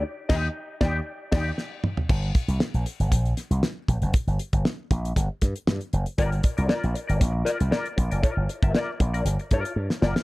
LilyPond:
<<
  \new Staff \with { instrumentName = "Clean electric guitar" } { \time 4/4 \key g \minor \tempo 4 = 117 r8 <ees' g' ees''>8 r8 <ees' g' d''>8 r8 <ees' g' d''>8 r4 | r1 | r1 | <f' bes' d''>16 r8 <f' bes' d''>16 <f' bes' d''>16 r8 <f' bes' d''>16 r8 <f' bes' d''>16 r16 <f' bes' d''>16 r8 <f' bes' d''>16 |
<f' bes' d''>8 r16 <f' bes' e''>16 <f' bes' d''>16 r8 <f' bes' d''>16 r8 <f' bes' d''>8 r8 <f' bes' d''>16 r16 | }
  \new Staff \with { instrumentName = "Slap bass" } { \clef bass \time 4/4 \key g \minor r8 ees,8 r8 ees,8 r8 ees,8 r4 | g,,8 r16 c,16 r16 bes,,16 r16 g,,16 bes,,8 r16 c,16 r8 bes,,16 fis,,16 | r16 g,,16 r16 g,,16 r8 bes,,8 g,,16 r16 g,16 r16 g,16 r16 fis,,16 r16 | g,,8 r16 c,16 r16 bes,,16 r16 g,,16 bes,,8 r16 c,16 r8 bes,,16 fis,,16 |
r16 g,,16 r16 g,,16 r8 bes,,8 g,,16 r16 g,16 r16 g,16 r16 fis,,16 r16 | }
  \new DrumStaff \with { instrumentName = "Drums" } \drummode { \time 4/4 r8 <cymc bd sn>8 r8 <bd sn>8 r8 <cymc bd sn>8 sn8 toml16 tomfh16 | <cymc bd>8 <hh bd>16 hh16 sn16 hh16 hh16 hh16 <hh bd>16 hh16 <hh sn>16 hh16 sn8 <hh bd>16 hh16 | <hh bd>16 hh16 hh16 <hh bd>16 sn8 <hh bd>16 hh16 <hh bd sn>8 <hh bd sn>16 hh16 sn16 hh16 hh16 hh16 | <hh bd>16 hh16 <hh bd>16 hh16 sn16 hh16 hh16 hh16 <hh bd sn>8 <hh sn>16 hh16 sn16 hh16 <hh bd>16 hh16 |
<hh bd>8 hh16 <hh bd>16 sn8 <hh bd>16 hh16 <hh sn>16 hh16 <hh bd sn>16 hh16 r16 sn16 sn16 sn16 | }
>>